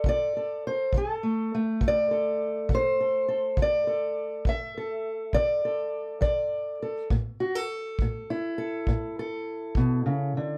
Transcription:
Already playing: F#4 A4
0.04 D3, kick
0.09 D5
0.37 A4
0.67 C5
0.93 D3, kick
0.97 A4
1.23 A3
1.55 A3
1.81 D3, kick
1.88 D5
2.11 A4
2.69 D3, kick
2.75 C5
3.01 A4
3.28 A4
3.57 D3, kick
3.62 D5
3.87 A4
4.45 D3 E5, kick
4.77 A4
5.33 D3 D5, kick
5.65 A4
6.21 D3 D5, kick
6.82 A4
7.10 A2, kick
7.40 F#4
7.55 A4
7.99 A2, kick
8.30 E4
8.58 A4
8.87 A2, kick
9.19 A4
9.75 B2, kick
10.06 C#3
10.37 D3

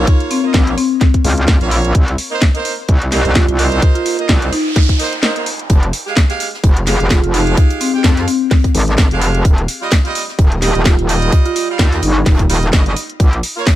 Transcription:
Already playing: A#3 F4 C#5
0.07 kick, closed hi-hat
0.20 closed hi-hat
0.31 C4, open hi-hat
0.44 A#3 C4 F4 D#5
0.54 A#1, kick, snare, closed hi-hat
0.67 A#3 F4 C#5, closed hi-hat
0.78 C4, open hi-hat
1.01 kick, snare, closed hi-hat
1.14 kick, closed hi-hat
1.24 C#2, open hi-hat
1.38 closed hi-hat
1.48 kick, snare, closed hi-hat
1.61 A#1 A#3 F4 C#5, closed hi-hat
1.71 open hi-hat
1.85 closed hi-hat
1.95 C2, kick, closed hi-hat
2.08 closed hi-hat
2.18 open hi-hat
2.31 A#3 D#4 C5
2.42 kick, snare, closed hi-hat
2.55 A#3 D#4 C5, closed hi-hat
2.65 open hi-hat
2.89 C2, kick, closed hi-hat
3.02 closed hi-hat
3.12 A#3 D#4 G4 C5, snare, open hi-hat
3.25 C2, closed hi-hat
3.35 F4, kick, snare, closed hi-hat
3.48 C2 F4, closed hi-hat
3.59 A#3 D#4 C5, open hi-hat
3.72 closed hi-hat
3.82 kick, closed hi-hat, noise sweep
3.95 F4, closed hi-hat
4.06 F4, open hi-hat
4.19 A#3 D#4 D#5, closed hi-hat
4.29 C2, kick, snare, closed hi-hat
4.42 A#3 D#4 C5, closed hi-hat
4.53 D#4, open hi-hat
4.76 kick, snare, closed hi-hat
4.89 kick, closed hi-hat
5.00 A#3 D#4 C5, open hi-hat
5.13 closed hi-hat
5.23 A#3 D#4 C5, snare, closed hi-hat
5.36 A#3 D#4 C5, closed hi-hat
5.46 open hi-hat
5.59 closed hi-hat
5.70 F1, kick, closed hi-hat
5.83 closed hi-hat
5.93 closed hi-hat, open hi-hat
6.06 G#3 G4 F5, snare
6.17 kick, snare, closed hi-hat
6.29 G#3 G4 F5, snare, closed hi-hat
6.40 snare, closed hi-hat, open hi-hat
6.54 snare
6.64 F1, kick, closed hi-hat
6.77 closed hi-hat
6.86 G#3 G4 G#4 F5, snare, closed hi-hat, open hi-hat
7.00 F1, closed hi-hat
7.10 F4, kick, snare, closed hi-hat
7.24 F1 F4, closed hi-hat
7.34 G#3 D#4 G4 F5, closed hi-hat, open hi-hat
7.47 closed hi-hat
7.57 kick, closed hi-hat
7.70 closed hi-hat
7.80 C4, closed hi-hat, open hi-hat
7.94 G#3 C4 G4 G5
8.04 F2, kick, snare, closed hi-hat
8.17 G#3 G4 F5, snare, closed hi-hat
8.28 C4, closed hi-hat, open hi-hat
8.51 kick, snare, closed hi-hat, open hi-hat
8.64 kick, closed hi-hat
8.74 G#1, closed hi-hat, open hi-hat
8.88 snare, closed hi-hat
8.98 kick, snare, closed hi-hat
9.11 F1 G#3 G4 F5, closed hi-hat
9.21 closed hi-hat, open hi-hat
9.35 closed hi-hat
9.45 D#1, kick, closed hi-hat
9.58 closed hi-hat
9.68 closed hi-hat, open hi-hat
9.82 G3 F4 D#5, snare
9.91 kick, snare, closed hi-hat
10.04 G3 F4 D#5, snare, closed hi-hat
10.15 snare, closed hi-hat, open hi-hat
10.28 snare
10.39 D#1, kick, closed hi-hat
10.52 closed hi-hat
10.62 G3 F4 G4 D#5, snare, closed hi-hat, open hi-hat
10.75 D#1, closed hi-hat
10.85 F4, kick, snare, closed hi-hat
10.99 D#1 F4, closed hi-hat
11.09 G3 F4 D#5, closed hi-hat, open hi-hat
11.22 closed hi-hat
11.32 kick, closed hi-hat
11.46 F4, closed hi-hat
11.56 F4, closed hi-hat, open hi-hat
11.69 G3 F4 F5
11.79 D#2, kick, snare, closed hi-hat
11.92 G3 F4 D#5, snare, closed hi-hat
12.02 G1 D#4, closed hi-hat, open hi-hat
12.26 D#1, kick, snare, closed hi-hat, open hi-hat
12.39 kick, closed hi-hat
12.49 D#1 G3 F4 D#5, closed hi-hat, open hi-hat
12.62 snare, closed hi-hat
12.72 G1 G3 F4 D#5, kick, snare, closed hi-hat
12.86 G3 F4 D#5, closed hi-hat
12.96 closed hi-hat, open hi-hat
13.10 closed hi-hat
13.20 A#1, kick, closed hi-hat
13.33 closed hi-hat
13.43 closed hi-hat, open hi-hat
13.56 A#3 F4 C#5, snare
13.67 kick, snare, closed hi-hat

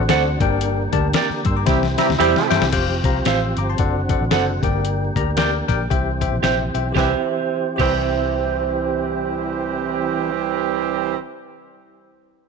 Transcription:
Already playing: D3 C4 F#4
0.09 D2 F#4 A4 C5 D5 F#5, snare, closed hi-hat
0.40 G1 G2 A#3 D4 G4 A#4 D5 G5, kick, closed hi-hat
0.61 closed hi-hat
0.92 D2 D4 G4 A#4 D5 A5, kick, closed hi-hat
1.13 A#4 D5 G5 A#5 D6, snare, closed hi-hat
1.30 muted fingered electric bass stroke, snare
1.45 G2 C6 E6, kick, closed hi-hat
1.57 A#5 D6
1.66 C2 C3 E3 G3 C4 E4 G4 C5 E5 G5, kick, snare, closed hi-hat
1.83 snare
1.98 G3 C4 E4 G4 C5 E5 A#5, snare, closed hi-hat
2.09 D2, snare
2.18 E2 G3 C4 E4 G4 C5 E5 G5, snare, closed hi-hat
2.36 snare
2.50 G2 E4 G4 C5 E5 G5, snare, closed hi-hat
2.61 C2, snare
2.72 F1 F3 C4 G4 C5 F5 G5, kick, closed hi-hat, crash
3.04 C2 G4 C5 F5 A#5, kick, closed hi-hat
3.25 A1 G4 C5 F5 C6 E6, snare, closed hi-hat
3.57 G1 A#5 D6, closed hi-hat
3.69 A5 C6
3.78 F#1 D3 F#4 A4 C5 D5 F#5, kick, closed hi-hat
4.09 A4 C5 D5 F#5, kick, closed hi-hat
4.21 A1
4.31 F#1 A4 C5 D5 F#5, snare, closed hi-hat
4.62 G1 G2 A#3 G4 A#4 D5 G5, kick, closed hi-hat
4.85 closed hi-hat
5.16 D2 G4 A#4 D5 A#5, kick, closed hi-hat
5.37 G4 A#4 D5 G5, snare, closed hi-hat
5.68 A#1 G4 A#4 D5 G5, kick, closed hi-hat
5.90 C2 C3 E3 C4 G4 C5 E5 G5, kick, closed hi-hat
6.21 G4 C5 E5 G5, kick, closed hi-hat
6.32 A#1
6.42 A#1 G4 C5 E5 G5, snare, closed hi-hat
6.74 B1 G4 C5 E5 G5, closed hi-hat
6.92 C2 E3 C4 G4 C5 E5, kick
6.96 G3 C4 G4 C5 E5 G5, snare
7.76 C2 E3 G3 C4 G4 C5 E5 G5, kick, crash
7.81 C5 E5

